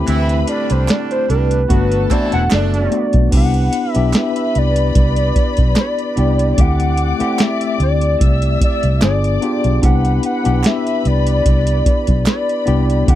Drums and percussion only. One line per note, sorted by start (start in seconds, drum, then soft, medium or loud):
0.08 closed hi-hat loud
0.29 closed hi-hat soft
0.47 closed hi-hat medium
0.70 closed hi-hat medium
0.88 snare loud
0.88 clap medium
0.88 closed hi-hat medium
1.11 closed hi-hat medium
1.30 closed hi-hat medium
1.51 closed hi-hat medium
1.70 kick loud
1.70 closed hi-hat medium
1.92 closed hi-hat medium
2.10 kick medium
2.10 clap medium
2.10 closed hi-hat medium
2.32 closed hi-hat medium
2.50 snare loud
2.50 clap medium
2.50 closed hi-hat medium
2.74 snare soft
2.74 closed hi-hat soft
2.92 closed hi-hat medium
3.13 kick loud
3.13 closed hi-hat medium
3.32 kick loud
3.32 closed hi-hat loud
3.32 crash loud
3.54 closed hi-hat soft
3.73 closed hi-hat medium
3.95 closed hi-hat medium
4.13 snare loud
4.13 clap medium
4.13 closed hi-hat loud
4.36 closed hi-hat medium
4.55 closed hi-hat medium
4.76 closed hi-hat medium
4.95 kick loud
4.95 closed hi-hat medium
5.16 closed hi-hat medium
5.36 kick medium
5.36 closed hi-hat medium
5.57 kick loud
5.57 closed hi-hat medium
5.75 snare loud
5.75 clap medium
5.75 closed hi-hat medium
5.99 closed hi-hat soft
6.17 closed hi-hat medium
6.39 closed hi-hat medium
6.58 kick loud
6.58 closed hi-hat loud
6.80 closed hi-hat soft
6.97 closed hi-hat medium
7.20 closed hi-hat medium
7.39 snare loud
7.39 clap medium
7.39 closed hi-hat medium
7.61 closed hi-hat medium
7.80 closed hi-hat medium
8.01 closed hi-hat medium
8.21 kick loud
8.21 closed hi-hat medium
8.42 closed hi-hat medium
8.61 kick medium
8.61 closed hi-hat medium
8.83 closed hi-hat medium
9.01 snare loud
9.01 clap medium
9.01 closed hi-hat medium
9.24 closed hi-hat soft
9.42 closed hi-hat medium
9.64 closed hi-hat medium
9.83 kick loud
9.83 closed hi-hat loud
10.05 closed hi-hat soft
10.23 closed hi-hat medium
10.45 closed hi-hat medium
10.64 snare loud
10.64 clap medium
10.64 closed hi-hat medium
10.87 closed hi-hat medium
11.05 closed hi-hat medium
11.27 closed hi-hat medium
11.46 kick loud
11.46 closed hi-hat medium
11.67 closed hi-hat medium
11.86 kick medium
11.86 closed hi-hat medium
12.07 kick loud
12.07 closed hi-hat medium
12.26 snare loud
12.26 clap medium
12.26 closed hi-hat medium
12.49 closed hi-hat soft
12.67 closed hi-hat medium
12.90 closed hi-hat medium
13.08 kick loud
13.08 closed hi-hat loud